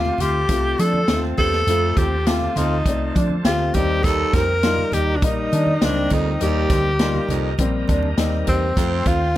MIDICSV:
0, 0, Header, 1, 8, 480
1, 0, Start_track
1, 0, Tempo, 591133
1, 1362, Time_signature, 4, 2, 24, 8
1, 7612, End_track
2, 0, Start_track
2, 0, Title_t, "Tonewheel organ"
2, 0, Program_c, 0, 16
2, 0, Note_on_c, 0, 65, 59
2, 0, Note_on_c, 0, 69, 55
2, 0, Note_on_c, 0, 72, 56
2, 0, Note_on_c, 0, 81, 66
2, 3008, Note_off_c, 0, 72, 0
2, 3010, Note_off_c, 0, 65, 0
2, 3010, Note_off_c, 0, 81, 0
2, 3011, Note_off_c, 0, 69, 0
2, 3041, Note_on_c, 0, 70, 66
2, 3044, Note_on_c, 0, 67, 75
2, 3046, Note_on_c, 0, 82, 73
2, 3050, Note_on_c, 0, 75, 66
2, 7088, Note_off_c, 0, 70, 0
2, 7089, Note_off_c, 0, 67, 0
2, 7090, Note_off_c, 0, 82, 0
2, 7092, Note_off_c, 0, 75, 0
2, 7120, Note_on_c, 0, 69, 60
2, 7122, Note_on_c, 0, 72, 57
2, 7123, Note_on_c, 0, 84, 70
2, 7125, Note_on_c, 0, 77, 54
2, 7612, Note_off_c, 0, 69, 0
2, 7612, Note_off_c, 0, 72, 0
2, 7612, Note_off_c, 0, 77, 0
2, 7612, Note_off_c, 0, 84, 0
2, 7612, End_track
3, 0, Start_track
3, 0, Title_t, "Tenor saxophone"
3, 0, Program_c, 1, 66
3, 0, Note_on_c, 1, 65, 95
3, 171, Note_on_c, 1, 67, 101
3, 183, Note_off_c, 1, 65, 0
3, 647, Note_on_c, 1, 69, 106
3, 659, Note_off_c, 1, 67, 0
3, 983, Note_off_c, 1, 69, 0
3, 1121, Note_on_c, 1, 69, 108
3, 1603, Note_on_c, 1, 67, 91
3, 1615, Note_off_c, 1, 69, 0
3, 1846, Note_on_c, 1, 65, 92
3, 1858, Note_off_c, 1, 67, 0
3, 2092, Note_on_c, 1, 63, 85
3, 2104, Note_off_c, 1, 65, 0
3, 2589, Note_off_c, 1, 63, 0
3, 2804, Note_on_c, 1, 65, 96
3, 3043, Note_on_c, 1, 67, 97
3, 3055, Note_off_c, 1, 65, 0
3, 3275, Note_on_c, 1, 69, 111
3, 3287, Note_off_c, 1, 67, 0
3, 3528, Note_on_c, 1, 70, 111
3, 3540, Note_off_c, 1, 69, 0
3, 4004, Note_on_c, 1, 67, 95
3, 4017, Note_off_c, 1, 70, 0
3, 4190, Note_on_c, 1, 62, 70
3, 4202, Note_off_c, 1, 67, 0
3, 4256, Note_on_c, 1, 63, 92
3, 4268, Note_off_c, 1, 62, 0
3, 4742, Note_on_c, 1, 62, 89
3, 4755, Note_off_c, 1, 63, 0
3, 4981, Note_on_c, 1, 63, 86
3, 4993, Note_off_c, 1, 62, 0
3, 5212, Note_off_c, 1, 63, 0
3, 5218, Note_on_c, 1, 67, 98
3, 6137, Note_off_c, 1, 67, 0
3, 6890, Note_on_c, 1, 60, 85
3, 7365, Note_on_c, 1, 65, 99
3, 7377, Note_off_c, 1, 60, 0
3, 7612, Note_off_c, 1, 65, 0
3, 7612, End_track
4, 0, Start_track
4, 0, Title_t, "Clean electric guitar"
4, 0, Program_c, 2, 27
4, 171, Note_on_c, 2, 65, 68
4, 319, Note_off_c, 2, 65, 0
4, 644, Note_on_c, 2, 62, 68
4, 794, Note_off_c, 2, 62, 0
4, 888, Note_on_c, 2, 60, 78
4, 1337, Note_off_c, 2, 60, 0
4, 1602, Note_on_c, 2, 60, 84
4, 1753, Note_off_c, 2, 60, 0
4, 1844, Note_on_c, 2, 67, 76
4, 1995, Note_off_c, 2, 67, 0
4, 2079, Note_on_c, 2, 65, 75
4, 2231, Note_off_c, 2, 65, 0
4, 2560, Note_on_c, 2, 62, 66
4, 2712, Note_off_c, 2, 62, 0
4, 2803, Note_on_c, 2, 60, 82
4, 3254, Note_off_c, 2, 60, 0
4, 3522, Note_on_c, 2, 60, 86
4, 3673, Note_off_c, 2, 60, 0
4, 3760, Note_on_c, 2, 65, 76
4, 3912, Note_off_c, 2, 65, 0
4, 4006, Note_on_c, 2, 63, 73
4, 4156, Note_off_c, 2, 63, 0
4, 4489, Note_on_c, 2, 62, 75
4, 4638, Note_off_c, 2, 62, 0
4, 4727, Note_on_c, 2, 60, 78
4, 5176, Note_off_c, 2, 60, 0
4, 5443, Note_on_c, 2, 60, 87
4, 5594, Note_off_c, 2, 60, 0
4, 5686, Note_on_c, 2, 65, 75
4, 5836, Note_off_c, 2, 65, 0
4, 5928, Note_on_c, 2, 63, 74
4, 6077, Note_off_c, 2, 63, 0
4, 6406, Note_on_c, 2, 62, 70
4, 6555, Note_off_c, 2, 62, 0
4, 6650, Note_on_c, 2, 60, 81
4, 7097, Note_off_c, 2, 60, 0
4, 7361, Note_on_c, 2, 60, 82
4, 7511, Note_off_c, 2, 60, 0
4, 7612, End_track
5, 0, Start_track
5, 0, Title_t, "Upright piano"
5, 0, Program_c, 3, 0
5, 0, Note_on_c, 3, 57, 73
5, 0, Note_on_c, 3, 60, 65
5, 0, Note_on_c, 3, 65, 72
5, 291, Note_off_c, 3, 60, 0
5, 292, Note_off_c, 3, 57, 0
5, 294, Note_off_c, 3, 65, 0
5, 405, Note_on_c, 3, 57, 71
5, 406, Note_on_c, 3, 60, 68
5, 407, Note_on_c, 3, 65, 82
5, 773, Note_off_c, 3, 57, 0
5, 774, Note_off_c, 3, 60, 0
5, 775, Note_off_c, 3, 65, 0
5, 883, Note_on_c, 3, 57, 71
5, 886, Note_on_c, 3, 60, 66
5, 888, Note_on_c, 3, 63, 61
5, 937, Note_off_c, 3, 63, 0
5, 940, Note_on_c, 3, 65, 74
5, 1253, Note_off_c, 3, 57, 0
5, 1254, Note_off_c, 3, 60, 0
5, 1281, Note_off_c, 3, 65, 0
5, 1366, Note_on_c, 3, 60, 63
5, 1367, Note_on_c, 3, 57, 75
5, 1369, Note_on_c, 3, 65, 82
5, 1734, Note_off_c, 3, 60, 0
5, 1735, Note_off_c, 3, 57, 0
5, 1736, Note_off_c, 3, 65, 0
5, 1841, Note_on_c, 3, 57, 75
5, 1841, Note_on_c, 3, 60, 65
5, 1847, Note_on_c, 3, 65, 77
5, 2212, Note_off_c, 3, 57, 0
5, 2212, Note_off_c, 3, 60, 0
5, 2215, Note_off_c, 3, 65, 0
5, 2328, Note_on_c, 3, 60, 64
5, 2329, Note_on_c, 3, 57, 71
5, 2330, Note_on_c, 3, 74, 78
5, 2696, Note_off_c, 3, 57, 0
5, 2696, Note_off_c, 3, 60, 0
5, 2696, Note_off_c, 3, 74, 0
5, 2805, Note_on_c, 3, 57, 73
5, 2806, Note_on_c, 3, 60, 64
5, 2807, Note_on_c, 3, 67, 86
5, 3044, Note_off_c, 3, 57, 0
5, 3044, Note_off_c, 3, 60, 0
5, 3045, Note_off_c, 3, 67, 0
5, 3050, Note_on_c, 3, 58, 69
5, 3052, Note_on_c, 3, 55, 76
5, 3053, Note_on_c, 3, 63, 79
5, 3622, Note_off_c, 3, 58, 0
5, 3624, Note_off_c, 3, 55, 0
5, 3624, Note_off_c, 3, 63, 0
5, 3767, Note_on_c, 3, 58, 66
5, 3769, Note_on_c, 3, 54, 59
5, 3772, Note_on_c, 3, 63, 84
5, 3818, Note_off_c, 3, 54, 0
5, 3819, Note_on_c, 3, 55, 71
5, 4135, Note_off_c, 3, 58, 0
5, 4138, Note_off_c, 3, 63, 0
5, 4161, Note_off_c, 3, 55, 0
5, 4250, Note_on_c, 3, 55, 73
5, 4250, Note_on_c, 3, 58, 68
5, 4255, Note_on_c, 3, 63, 83
5, 4617, Note_off_c, 3, 55, 0
5, 4617, Note_off_c, 3, 58, 0
5, 4619, Note_off_c, 3, 63, 0
5, 4730, Note_on_c, 3, 54, 60
5, 4732, Note_on_c, 3, 58, 70
5, 4732, Note_on_c, 3, 63, 83
5, 4779, Note_off_c, 3, 54, 0
5, 4781, Note_on_c, 3, 55, 73
5, 5097, Note_off_c, 3, 63, 0
5, 5098, Note_off_c, 3, 58, 0
5, 5122, Note_off_c, 3, 55, 0
5, 5202, Note_on_c, 3, 55, 73
5, 5203, Note_on_c, 3, 58, 71
5, 5204, Note_on_c, 3, 63, 80
5, 5572, Note_off_c, 3, 55, 0
5, 5573, Note_off_c, 3, 58, 0
5, 5574, Note_off_c, 3, 63, 0
5, 5684, Note_on_c, 3, 55, 74
5, 5688, Note_on_c, 3, 58, 72
5, 5691, Note_on_c, 3, 63, 79
5, 6053, Note_off_c, 3, 55, 0
5, 6055, Note_off_c, 3, 58, 0
5, 6057, Note_off_c, 3, 63, 0
5, 6163, Note_on_c, 3, 55, 87
5, 6163, Note_on_c, 3, 58, 80
5, 6168, Note_on_c, 3, 60, 100
5, 6532, Note_off_c, 3, 58, 0
5, 6533, Note_off_c, 3, 55, 0
5, 6535, Note_off_c, 3, 60, 0
5, 6638, Note_on_c, 3, 55, 82
5, 6643, Note_on_c, 3, 58, 74
5, 6646, Note_on_c, 3, 63, 98
5, 7010, Note_off_c, 3, 55, 0
5, 7012, Note_off_c, 3, 58, 0
5, 7014, Note_off_c, 3, 63, 0
5, 7119, Note_on_c, 3, 60, 63
5, 7120, Note_on_c, 3, 57, 66
5, 7123, Note_on_c, 3, 65, 73
5, 7490, Note_off_c, 3, 60, 0
5, 7491, Note_off_c, 3, 57, 0
5, 7492, Note_off_c, 3, 65, 0
5, 7612, End_track
6, 0, Start_track
6, 0, Title_t, "Baritone saxophone"
6, 0, Program_c, 4, 67
6, 1124, Note_on_c, 4, 43, 80
6, 1315, Note_off_c, 4, 43, 0
6, 1367, Note_on_c, 4, 41, 78
6, 1703, Note_off_c, 4, 41, 0
6, 2089, Note_on_c, 4, 41, 74
6, 2278, Note_off_c, 4, 41, 0
6, 3048, Note_on_c, 4, 39, 70
6, 3238, Note_off_c, 4, 39, 0
6, 3286, Note_on_c, 4, 39, 99
6, 3623, Note_off_c, 4, 39, 0
6, 4964, Note_on_c, 4, 41, 81
6, 5155, Note_off_c, 4, 41, 0
6, 5207, Note_on_c, 4, 39, 84
6, 5543, Note_off_c, 4, 39, 0
6, 5926, Note_on_c, 4, 41, 72
6, 6116, Note_off_c, 4, 41, 0
6, 6880, Note_on_c, 4, 43, 68
6, 7072, Note_off_c, 4, 43, 0
6, 7122, Note_on_c, 4, 41, 96
6, 7460, Note_off_c, 4, 41, 0
6, 7612, End_track
7, 0, Start_track
7, 0, Title_t, "Fingered electric bass"
7, 0, Program_c, 5, 33
7, 157, Note_on_c, 5, 38, 77
7, 356, Note_off_c, 5, 38, 0
7, 396, Note_on_c, 5, 36, 93
7, 595, Note_off_c, 5, 36, 0
7, 642, Note_on_c, 5, 53, 94
7, 839, Note_off_c, 5, 53, 0
7, 876, Note_on_c, 5, 39, 89
7, 1075, Note_off_c, 5, 39, 0
7, 1122, Note_on_c, 5, 40, 89
7, 1319, Note_off_c, 5, 40, 0
7, 1355, Note_on_c, 5, 41, 98
7, 1555, Note_off_c, 5, 41, 0
7, 1600, Note_on_c, 5, 39, 88
7, 1995, Note_off_c, 5, 39, 0
7, 2077, Note_on_c, 5, 38, 93
7, 2276, Note_off_c, 5, 38, 0
7, 2318, Note_on_c, 5, 36, 89
7, 2517, Note_off_c, 5, 36, 0
7, 2565, Note_on_c, 5, 53, 86
7, 2761, Note_off_c, 5, 53, 0
7, 2801, Note_on_c, 5, 38, 92
7, 2999, Note_off_c, 5, 38, 0
7, 3043, Note_on_c, 5, 39, 98
7, 3437, Note_off_c, 5, 39, 0
7, 3522, Note_on_c, 5, 41, 92
7, 3917, Note_off_c, 5, 41, 0
7, 4003, Note_on_c, 5, 39, 76
7, 4243, Note_off_c, 5, 39, 0
7, 4243, Note_on_c, 5, 34, 93
7, 4440, Note_off_c, 5, 34, 0
7, 4487, Note_on_c, 5, 51, 95
7, 4682, Note_off_c, 5, 51, 0
7, 4729, Note_on_c, 5, 37, 92
7, 4924, Note_off_c, 5, 37, 0
7, 4964, Note_on_c, 5, 38, 85
7, 5160, Note_off_c, 5, 38, 0
7, 5199, Note_on_c, 5, 39, 104
7, 5398, Note_off_c, 5, 39, 0
7, 5442, Note_on_c, 5, 38, 88
7, 5836, Note_off_c, 5, 38, 0
7, 5921, Note_on_c, 5, 36, 74
7, 6119, Note_off_c, 5, 36, 0
7, 6159, Note_on_c, 5, 34, 96
7, 6357, Note_off_c, 5, 34, 0
7, 6405, Note_on_c, 5, 39, 72
7, 6601, Note_off_c, 5, 39, 0
7, 6639, Note_on_c, 5, 39, 89
7, 6837, Note_off_c, 5, 39, 0
7, 6881, Note_on_c, 5, 40, 80
7, 7078, Note_off_c, 5, 40, 0
7, 7120, Note_on_c, 5, 41, 95
7, 7317, Note_off_c, 5, 41, 0
7, 7355, Note_on_c, 5, 39, 88
7, 7612, Note_off_c, 5, 39, 0
7, 7612, End_track
8, 0, Start_track
8, 0, Title_t, "Drums"
8, 44, Note_on_c, 9, 63, 65
8, 125, Note_off_c, 9, 63, 0
8, 149, Note_on_c, 9, 62, 31
8, 149, Note_on_c, 9, 63, 72
8, 149, Note_on_c, 9, 64, 74
8, 164, Note_on_c, 9, 42, 77
8, 230, Note_off_c, 9, 62, 0
8, 230, Note_off_c, 9, 63, 0
8, 230, Note_off_c, 9, 64, 0
8, 245, Note_off_c, 9, 42, 0
8, 391, Note_on_c, 9, 62, 26
8, 395, Note_on_c, 9, 42, 81
8, 398, Note_on_c, 9, 36, 93
8, 472, Note_off_c, 9, 62, 0
8, 476, Note_off_c, 9, 42, 0
8, 479, Note_off_c, 9, 36, 0
8, 634, Note_on_c, 9, 62, 32
8, 644, Note_on_c, 9, 42, 65
8, 715, Note_off_c, 9, 62, 0
8, 725, Note_off_c, 9, 42, 0
8, 760, Note_on_c, 9, 63, 58
8, 841, Note_off_c, 9, 63, 0
8, 876, Note_on_c, 9, 38, 105
8, 878, Note_on_c, 9, 42, 74
8, 878, Note_on_c, 9, 62, 31
8, 878, Note_on_c, 9, 63, 70
8, 957, Note_off_c, 9, 38, 0
8, 959, Note_off_c, 9, 42, 0
8, 959, Note_off_c, 9, 62, 0
8, 959, Note_off_c, 9, 63, 0
8, 1116, Note_on_c, 9, 46, 46
8, 1117, Note_on_c, 9, 63, 47
8, 1117, Note_on_c, 9, 64, 60
8, 1122, Note_on_c, 9, 36, 78
8, 1197, Note_off_c, 9, 46, 0
8, 1198, Note_off_c, 9, 63, 0
8, 1198, Note_off_c, 9, 64, 0
8, 1203, Note_off_c, 9, 36, 0
8, 1240, Note_on_c, 9, 38, 30
8, 1321, Note_off_c, 9, 38, 0
8, 1354, Note_on_c, 9, 64, 65
8, 1359, Note_on_c, 9, 42, 77
8, 1435, Note_off_c, 9, 64, 0
8, 1440, Note_off_c, 9, 42, 0
8, 1598, Note_on_c, 9, 36, 97
8, 1598, Note_on_c, 9, 42, 67
8, 1601, Note_on_c, 9, 63, 66
8, 1679, Note_off_c, 9, 36, 0
8, 1679, Note_off_c, 9, 42, 0
8, 1682, Note_off_c, 9, 63, 0
8, 1837, Note_on_c, 9, 62, 28
8, 1839, Note_on_c, 9, 42, 78
8, 1843, Note_on_c, 9, 38, 101
8, 1919, Note_off_c, 9, 62, 0
8, 1921, Note_off_c, 9, 42, 0
8, 1924, Note_off_c, 9, 38, 0
8, 1967, Note_on_c, 9, 63, 61
8, 2048, Note_off_c, 9, 63, 0
8, 2080, Note_on_c, 9, 62, 34
8, 2080, Note_on_c, 9, 63, 70
8, 2080, Note_on_c, 9, 64, 75
8, 2084, Note_on_c, 9, 42, 76
8, 2161, Note_off_c, 9, 62, 0
8, 2161, Note_off_c, 9, 63, 0
8, 2161, Note_off_c, 9, 64, 0
8, 2165, Note_off_c, 9, 42, 0
8, 2319, Note_on_c, 9, 36, 89
8, 2320, Note_on_c, 9, 42, 75
8, 2400, Note_off_c, 9, 36, 0
8, 2401, Note_off_c, 9, 42, 0
8, 2559, Note_on_c, 9, 62, 32
8, 2565, Note_on_c, 9, 36, 87
8, 2566, Note_on_c, 9, 42, 66
8, 2640, Note_off_c, 9, 62, 0
8, 2646, Note_off_c, 9, 36, 0
8, 2647, Note_off_c, 9, 42, 0
8, 2674, Note_on_c, 9, 63, 59
8, 2756, Note_off_c, 9, 63, 0
8, 2798, Note_on_c, 9, 62, 31
8, 2798, Note_on_c, 9, 63, 64
8, 2799, Note_on_c, 9, 38, 104
8, 2801, Note_on_c, 9, 42, 74
8, 2879, Note_off_c, 9, 62, 0
8, 2879, Note_off_c, 9, 63, 0
8, 2881, Note_off_c, 9, 38, 0
8, 2882, Note_off_c, 9, 42, 0
8, 3035, Note_on_c, 9, 42, 68
8, 3039, Note_on_c, 9, 62, 29
8, 3039, Note_on_c, 9, 63, 45
8, 3039, Note_on_c, 9, 64, 63
8, 3043, Note_on_c, 9, 36, 78
8, 3116, Note_off_c, 9, 42, 0
8, 3120, Note_off_c, 9, 62, 0
8, 3120, Note_off_c, 9, 63, 0
8, 3120, Note_off_c, 9, 64, 0
8, 3124, Note_off_c, 9, 36, 0
8, 3273, Note_on_c, 9, 62, 30
8, 3273, Note_on_c, 9, 64, 69
8, 3282, Note_on_c, 9, 36, 117
8, 3284, Note_on_c, 9, 42, 77
8, 3355, Note_off_c, 9, 62, 0
8, 3355, Note_off_c, 9, 64, 0
8, 3364, Note_off_c, 9, 36, 0
8, 3365, Note_off_c, 9, 42, 0
8, 3519, Note_on_c, 9, 42, 75
8, 3520, Note_on_c, 9, 36, 104
8, 3520, Note_on_c, 9, 63, 60
8, 3525, Note_on_c, 9, 38, 34
8, 3600, Note_off_c, 9, 42, 0
8, 3601, Note_off_c, 9, 36, 0
8, 3601, Note_off_c, 9, 63, 0
8, 3607, Note_off_c, 9, 38, 0
8, 3759, Note_on_c, 9, 42, 73
8, 3762, Note_on_c, 9, 38, 106
8, 3840, Note_off_c, 9, 42, 0
8, 3843, Note_off_c, 9, 38, 0
8, 3885, Note_on_c, 9, 63, 64
8, 3966, Note_off_c, 9, 63, 0
8, 3995, Note_on_c, 9, 63, 72
8, 3995, Note_on_c, 9, 64, 72
8, 4004, Note_on_c, 9, 42, 80
8, 4077, Note_off_c, 9, 63, 0
8, 4077, Note_off_c, 9, 64, 0
8, 4085, Note_off_c, 9, 42, 0
8, 4238, Note_on_c, 9, 62, 28
8, 4240, Note_on_c, 9, 42, 85
8, 4241, Note_on_c, 9, 36, 100
8, 4319, Note_off_c, 9, 62, 0
8, 4322, Note_off_c, 9, 36, 0
8, 4322, Note_off_c, 9, 42, 0
8, 4481, Note_on_c, 9, 62, 33
8, 4487, Note_on_c, 9, 42, 62
8, 4562, Note_off_c, 9, 62, 0
8, 4568, Note_off_c, 9, 42, 0
8, 4600, Note_on_c, 9, 63, 63
8, 4681, Note_off_c, 9, 63, 0
8, 4722, Note_on_c, 9, 38, 100
8, 4723, Note_on_c, 9, 42, 77
8, 4725, Note_on_c, 9, 62, 33
8, 4725, Note_on_c, 9, 63, 69
8, 4803, Note_off_c, 9, 38, 0
8, 4805, Note_off_c, 9, 42, 0
8, 4806, Note_off_c, 9, 62, 0
8, 4806, Note_off_c, 9, 63, 0
8, 4954, Note_on_c, 9, 42, 67
8, 4963, Note_on_c, 9, 62, 30
8, 4963, Note_on_c, 9, 63, 45
8, 4963, Note_on_c, 9, 64, 65
8, 4964, Note_on_c, 9, 36, 80
8, 5036, Note_off_c, 9, 42, 0
8, 5044, Note_off_c, 9, 62, 0
8, 5044, Note_off_c, 9, 63, 0
8, 5044, Note_off_c, 9, 64, 0
8, 5045, Note_off_c, 9, 36, 0
8, 5202, Note_on_c, 9, 42, 76
8, 5202, Note_on_c, 9, 62, 29
8, 5202, Note_on_c, 9, 64, 69
8, 5283, Note_off_c, 9, 62, 0
8, 5283, Note_off_c, 9, 64, 0
8, 5284, Note_off_c, 9, 42, 0
8, 5437, Note_on_c, 9, 42, 67
8, 5440, Note_on_c, 9, 36, 99
8, 5442, Note_on_c, 9, 62, 29
8, 5442, Note_on_c, 9, 63, 64
8, 5444, Note_on_c, 9, 38, 36
8, 5518, Note_off_c, 9, 42, 0
8, 5521, Note_off_c, 9, 36, 0
8, 5523, Note_off_c, 9, 62, 0
8, 5523, Note_off_c, 9, 63, 0
8, 5525, Note_off_c, 9, 38, 0
8, 5677, Note_on_c, 9, 42, 72
8, 5680, Note_on_c, 9, 38, 105
8, 5758, Note_off_c, 9, 42, 0
8, 5761, Note_off_c, 9, 38, 0
8, 5807, Note_on_c, 9, 63, 62
8, 5888, Note_off_c, 9, 63, 0
8, 5916, Note_on_c, 9, 62, 32
8, 5916, Note_on_c, 9, 63, 69
8, 5916, Note_on_c, 9, 64, 75
8, 5928, Note_on_c, 9, 42, 77
8, 5998, Note_off_c, 9, 62, 0
8, 5998, Note_off_c, 9, 63, 0
8, 5998, Note_off_c, 9, 64, 0
8, 6009, Note_off_c, 9, 42, 0
8, 6154, Note_on_c, 9, 62, 28
8, 6160, Note_on_c, 9, 42, 87
8, 6161, Note_on_c, 9, 36, 88
8, 6235, Note_off_c, 9, 62, 0
8, 6241, Note_off_c, 9, 42, 0
8, 6242, Note_off_c, 9, 36, 0
8, 6395, Note_on_c, 9, 62, 33
8, 6406, Note_on_c, 9, 36, 82
8, 6407, Note_on_c, 9, 42, 58
8, 6477, Note_off_c, 9, 62, 0
8, 6487, Note_off_c, 9, 36, 0
8, 6488, Note_off_c, 9, 42, 0
8, 6516, Note_on_c, 9, 63, 65
8, 6598, Note_off_c, 9, 63, 0
8, 6639, Note_on_c, 9, 38, 103
8, 6639, Note_on_c, 9, 62, 32
8, 6639, Note_on_c, 9, 63, 70
8, 6640, Note_on_c, 9, 42, 77
8, 6720, Note_off_c, 9, 38, 0
8, 6720, Note_off_c, 9, 62, 0
8, 6720, Note_off_c, 9, 63, 0
8, 6721, Note_off_c, 9, 42, 0
8, 6877, Note_on_c, 9, 42, 69
8, 6880, Note_on_c, 9, 62, 29
8, 6880, Note_on_c, 9, 63, 46
8, 6880, Note_on_c, 9, 64, 64
8, 6883, Note_on_c, 9, 36, 79
8, 6958, Note_off_c, 9, 42, 0
8, 6961, Note_off_c, 9, 62, 0
8, 6961, Note_off_c, 9, 63, 0
8, 6961, Note_off_c, 9, 64, 0
8, 6965, Note_off_c, 9, 36, 0
8, 7111, Note_on_c, 9, 64, 65
8, 7119, Note_on_c, 9, 42, 79
8, 7120, Note_on_c, 9, 36, 108
8, 7192, Note_off_c, 9, 64, 0
8, 7200, Note_off_c, 9, 42, 0
8, 7202, Note_off_c, 9, 36, 0
8, 7353, Note_on_c, 9, 62, 30
8, 7353, Note_on_c, 9, 63, 61
8, 7354, Note_on_c, 9, 42, 68
8, 7356, Note_on_c, 9, 36, 94
8, 7434, Note_off_c, 9, 62, 0
8, 7434, Note_off_c, 9, 63, 0
8, 7436, Note_off_c, 9, 42, 0
8, 7438, Note_off_c, 9, 36, 0
8, 7612, End_track
0, 0, End_of_file